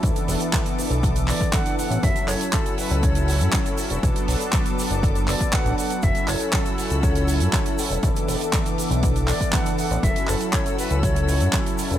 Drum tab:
HH |xxoxxxoxxxoxxxox|xxoxxxoxxxoxxxox|xxoxxxoxxxoxxxox|xxoxxxoxxxoxxxox|
SH |xxxxxxxxxxxxxxxx|xxxxxxxxxxxxxxxx|xxxxxxxxxxxxxxxx|xxxxxxxxxxxxxxxx|
CP |----x-----x-x---|--x-x-------x---|----x-----x-x---|--x-x-------x---|
BD |o---o---o--oo---|o---o---o---o---|o---o---o--oo---|o---o---o---o---|

HH |xxoxxxoxxxoxxxox|xxoxxxoxxxoxxxox|
SH |xxxxxxxxxxxxxxxx|xxxxxxxxxxxxxxxx|
CP |----x-----x-x---|--x-x-------x---|
BD |o---o---o--oo---|o---o---o---o---|